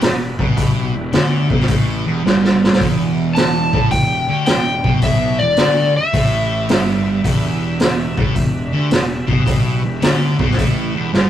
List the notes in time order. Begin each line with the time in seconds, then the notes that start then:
Already playing: B3 E4 G4 B4
0.01 E1 E2, snare, open hi-hat
0.39 B1 B2, kick
0.57 E4 G4 B4, kick, open hi-hat
0.95 E1 E2
1.13 D2 D3, snare, open hi-hat
1.50 B1 B2, kick
1.60 snare
1.68 A1 A2, kick, open hi-hat
2.05 E1 E2
2.24 G1 G2, snare
2.44 snare
2.64 snare
2.73 snare
2.78 E1 E2 E4 G4 B4, kick, open hi-hat
3.35 A5, snare, open hi-hat
3.73 A1 A2, kick
3.91 E1 E2 G5, kick, open hi-hat
4.29 D2 D3
4.46 E1 E2 G5, snare, open hi-hat
4.84 B1 B2, kick
5.02 E4 G4 B4 E5, kick, open hi-hat
5.39 E1 E2 D5
5.57 D2 D3, snare, open hi-hat
5.96 E5, muted fingered electric bass stroke, muted distorted electric guitar stroke
6.13 A1 A2, kick, open hi-hat
6.69 G1 G2, snare, open hi-hat
7.24 E1 E2 G4 B4 E5, kick, open hi-hat
7.80 snare, open hi-hat
8.17 A1 A2, kick
8.35 E1 E2, kick, open hi-hat
8.73 D2 D3
8.90 E1 E2, snare, open hi-hat
9.27 B1 B2, kick
9.45 E4 G4 B4, kick, open hi-hat
9.83 E1 E2
10.01 D2 D3, snare, open hi-hat
10.39 B1 B2, kick
10.51 snare
10.57 A1 A2, kick, open hi-hat
10.94 E1 E2
11.13 G1 G2, snare